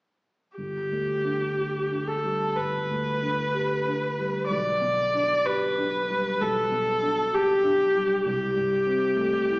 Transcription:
0.57 G1 G4
0.91 D2
1.24 D4
1.57 G4
1.91 D4
2.08 A4
2.24 G3
2.56 G1 B4
2.91 D2
3.22 D4
3.54 G4
3.87 D4
4.19 G3
4.49 B1 D5
4.81 B2
5.14 D4
5.45 G4 B4
5.77 D4
6.10 G3
6.41 B1 A4
6.71 B2
7.02 D4
7.33 G4
7.64 D4
7.95 G3
8.25 C2 G4
8.56 G2
8.86 C4
9.16 A3
9.49 E4

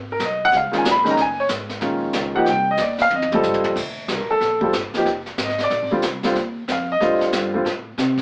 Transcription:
Already playing: G#1
0.12 A#4
0.19 B1, kick, snare, hi-hat pedal
0.25 D#5
0.45 F#5
0.52 C#2, brush sweep, kick, snare
0.57 F5
0.71 D#3 G#3 C#4 F4, muted upright bass stroke, snare
0.78 G#5
0.84 A#1, kick, snare, hi-hat pedal
0.91 B5
1.03 D#3 G#3 C#4 D#4, snare
1.10 A#5
1.17 F#1, brush sweep, kick, snare
1.21 G#5
1.40 C#5
1.49 G#1, kick, snare, hi-hat pedal
1.69 snare
1.80 A#1 D#3 G#3 C#4 F4, brush sweep, kick, snare
2.13 C#2, kick, snare, hi-hat pedal
2.35 F3 A#3 D#4 G4 F#5
2.46 C2, brush sweep, kick, snare
2.50 G5
2.71 D#5
2.77 D#2, kick, snare, hi-hat pedal
2.82 D5
2.98 F5, snare
3.10 F2, high tom
3.15 D#5
3.22 high tom
3.32 G3 C4 F4 A4, mid tom
3.43 G2, floor tom, hi-hat pedal
3.54 floor tom
3.64 floor tom
3.76 D2, brush sweep, kick, snare, crash
4.08 C2, kick, snare, hi-hat pedal
4.15 A#4
4.20 A#1
4.31 A1 A4
4.41 A#1, brush sweep, kick, snare
4.61 G3 C4 F4 A4, kick
4.73 G1, kick, snare, hi-hat pedal
4.94 F3 A#3 D#4 G4, muted upright bass stroke, snare
5.05 F1, brush sweep, kick, snare
5.26 snare
5.38 G#1, kick, snare, hi-hat pedal
5.45 D#5, snare
5.58 snare
5.60 D5, snare
5.70 A#1, brush sweep, kick, snare
5.82 G#1
5.91 F1 D3 G3 C4 F4
6.02 C2, kick, snare, hi-hat pedal
6.23 D3 G3 C4 F4, snare
6.35 D#2, brush sweep, kick, snare
6.68 F2, kick, snare, hi-hat pedal
6.72 F5
6.92 D#5
7.00 D2 D3 G3 C4 F4, brush sweep, kick, snare
7.21 snare
7.32 G2, kick, snare, hi-hat pedal
7.54 D3 G3 C4 F4
7.65 A2, brush sweep, kick, snare
7.98 C3, kick, snare, hi-hat pedal
8.18 kick, snare

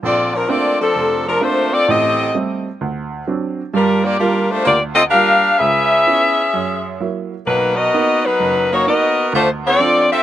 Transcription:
0.03 A#1 C4 F4 A4 D5
0.35 F3 C4 D4 A#4
0.48 A3 A#3 C4 D4 F4 A4 D5
0.81 F3 C4 D4 A4
0.96 F1
1.28 F3 C4 D4 A#4
1.41 A3 A#3 C4 D4 F4 C5
1.73 C4 F4 A4 D5
1.88 A1 A2 C4 G4 A4 D#5
2.34 G3 A3 C4
2.81 D2
3.27 F#3 C4 D4
3.74 G2 G3 D4 F4 A#4
4.05 A#3 F4 G4 D5
4.19 G3 A#3 D4 F4 A#4
4.50 A3 D4 F4 C5
4.65 D2 A#3 F4 G4 D5
4.95 C4 F4 A4 D#5
5.10 G3 A#3 D4 G4 A#4 F5
5.14 F4
5.58 C#2 C#4 G#4 B4 E5
6.07 B3 C#4 E4
6.54 F#2
7.00 F#3 A#3 E4
7.47 B1 F#3 A#3 D#4 B4
7.76 B3 F#4 A#4 D#5
7.94 A#3 B3 D#4
8.25 F#3 D#4 A#4 B4
8.40 F#1
8.73 A#3 D#4 F#4 C#5
8.86 A#3 B3 D#4 F#4 A#4 D#5
9.33 D2 A3 D4 F4 C5
9.67 C4 F4 A4 D5
9.79 F3 C4 D4
10.12 C4 F4 A4 E5

